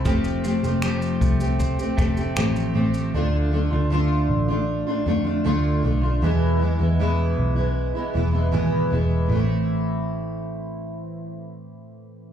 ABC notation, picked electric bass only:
X:1
M:4/4
L:1/16
Q:1/4=78
K:Am
V:1 name="Picked electric bass" clef=bass
F,,,3 F,,,3 C,,3 z F,,,2 A,,,2 A,,,2 | D,,3 D,,3 A,,,3 z F,,2 D,,2 B,,,2 | E,,3 E,,3 B,,,3 z E,,,2 ^G,,,2 E,,,2 | A,,,16 |]